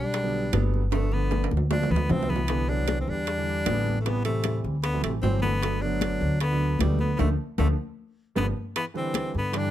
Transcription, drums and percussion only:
0.14 high bongo medium
0.14 high conga soft
0.14 high timbale medium
0.33 high conga soft
0.53 high bongo soft
0.53 low bongo medium
0.53 high conga medium
0.53 high timbale medium
0.53 low timbale medium
0.74 high bongo soft
0.92 high bongo medium
0.92 high conga soft
0.92 high timbale medium
1.12 high bongo soft
1.12 high conga soft
1.31 high bongo medium
1.31 high conga medium
1.31 high timbale medium
1.44 high timbale medium
1.51 high bongo soft
1.51 high conga medium
1.57 low timbale medium
1.71 high bongo medium
1.71 high conga medium
1.71 low timbale medium
1.83 low timbale medium
1.91 low conga medium
1.96 low timbale medium
2.10 high bongo soft
2.10 low bongo medium
2.10 low conga medium
2.10 low timbale medium
2.23 low timbale medium
2.30 high bongo soft
2.30 low conga medium
2.36 low timbale medium
2.48 high bongo medium
2.48 high conga soft
2.48 high timbale medium
2.69 high bongo soft
2.69 high conga soft
2.88 high bongo medium
2.88 high conga medium
2.88 high timbale medium
2.88 low timbale medium
3.08 high bongo soft
3.08 high conga soft
3.27 high bongo medium
3.27 high conga soft
3.27 high timbale medium
3.48 high conga soft
3.66 high bongo soft
3.66 low bongo medium
3.66 high conga medium
3.66 high timbale medium
3.66 low timbale medium
3.86 high bongo soft
3.86 high conga medium
4.06 high bongo medium
4.06 high conga soft
4.06 high timbale medium
4.25 high bongo soft
4.25 high conga soft
4.25 high timbale medium
4.44 high bongo medium
4.44 high conga medium
4.44 high timbale medium
4.44 low timbale medium
4.64 high bongo soft
4.64 high conga soft
4.84 high bongo medium
4.84 high conga soft
4.84 high timbale medium
5.04 high conga soft
5.04 high timbale medium
5.23 high bongo soft
5.23 low bongo medium
5.23 high conga soft
5.23 low timbale medium
5.43 high bongo soft
5.43 high conga medium
5.63 high bongo medium
5.63 high timbale medium
5.82 high bongo soft
5.82 high conga soft
6.01 high bongo medium
6.01 high conga medium
6.01 high timbale medium
6.01 low timbale medium
6.21 high bongo soft
6.21 high conga soft
6.40 high bongo medium
6.40 high conga soft
6.40 high timbale medium
6.60 high conga soft
6.79 high bongo soft
6.79 low bongo medium
6.79 high conga medium
6.79 high timbale medium
6.79 low timbale medium
6.99 high bongo soft
6.99 high conga medium
7.19 low bongo medium
7.19 high conga loud
7.19 high timbale medium
7.58 low bongo medium
7.58 high conga loud
7.58 high timbale medium
8.36 low bongo medium
8.36 high conga loud
8.36 high timbale medium
8.76 high bongo medium
8.76 high conga soft
8.76 high timbale medium
8.95 high bongo soft
8.95 high conga soft
9.14 high bongo medium
9.14 high conga medium
9.14 high timbale medium
9.14 low timbale medium
9.34 high bongo soft
9.34 high conga soft
9.53 high bongo medium
9.53 high conga soft
9.53 high timbale medium

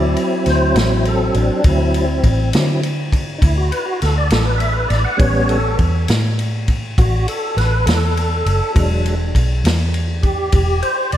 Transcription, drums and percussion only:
0.16 ride medium
0.46 snare soft
0.46 ride soft
0.76 snare loud
0.76 ride medium
1.05 ride medium
1.34 ride medium
1.64 kick loud
1.64 ride medium
1.94 ride medium
2.24 kick medium
2.24 ride medium
2.53 snare loud
2.53 ride medium
2.83 ride medium
3.12 kick medium
3.12 ride medium
3.42 kick medium
3.42 ride medium
3.72 ride medium
4.02 snare soft
4.02 ride medium
4.30 snare loud
4.30 ride medium
4.60 ride medium
4.90 snare soft
4.90 ride medium
5.19 kick loud
5.19 ride medium
5.49 ride medium
5.79 kick medium
5.79 ride medium
6.08 snare loud
6.08 ride medium
6.39 ride medium
6.68 kick medium
6.68 ride medium
6.98 kick loud
6.98 ride medium
7.28 ride medium
7.58 snare soft
7.58 ride medium
7.87 snare loud
7.87 ride medium
8.17 ride medium
8.46 ride medium
8.76 kick loud
8.76 ride medium
9.05 ride medium
9.35 kick medium
9.35 ride medium
9.65 snare loud
9.65 ride medium
9.94 ride medium
10.23 kick medium
10.23 ride medium
10.52 kick medium
10.52 ride medium
10.82 ride medium
11.12 ride medium

